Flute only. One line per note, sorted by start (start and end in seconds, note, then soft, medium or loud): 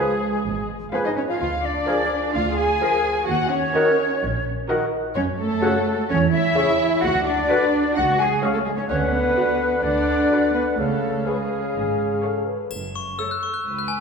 0.00 0.67 G#4 medium
0.92 1.06 B4 medium
1.05 1.16 D#5 medium
1.17 1.22 C#5 medium
1.29 1.40 F5 medium
1.41 1.67 F5 medium
1.65 2.34 D5 medium
2.35 2.41 F5 medium
2.60 3.28 G#5 medium
3.29 3.35 F#5 medium
3.52 4.44 C#5 medium
5.15 5.21 C#5 medium
5.39 6.07 A4 medium
6.09 6.31 C#5 medium
6.32 7.00 E5 medium
7.01 7.07 F#5 medium
7.25 7.96 D5 medium
7.94 8.17 F#5 medium
8.18 8.41 G#5 medium
8.43 8.48 G#4 medium
8.53 8.59 A4 medium
8.66 8.72 G#4 medium
8.78 8.89 C#5 medium
8.90 8.96 C#5 medium
9.13 9.84 B4 medium
9.83 10.55 D5 medium
10.55 10.80 B4 medium
10.78 11.28 A4 medium
11.27 12.23 G#4 soft